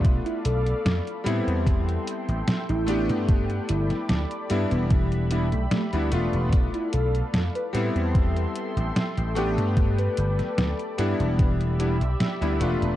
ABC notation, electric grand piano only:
X:1
M:4/4
L:1/16
Q:1/4=74
K:Am
V:1 name="Electric grand piano"
[A,B,DF]6 [G,B,CE]8 [A,B,DG]2- | [A,B,DG]6 [G,B,DE]4 [G,B,DE] z2 [G,B,DE] [A,B,DF]2- | [A,B,DF]6 [G,B,CE]8 [A,B,DG]2- | [A,B,DG]6 [G,B,DE]4 [G,B,DE] z2 [G,B,DE] [A,B,DF]2 |]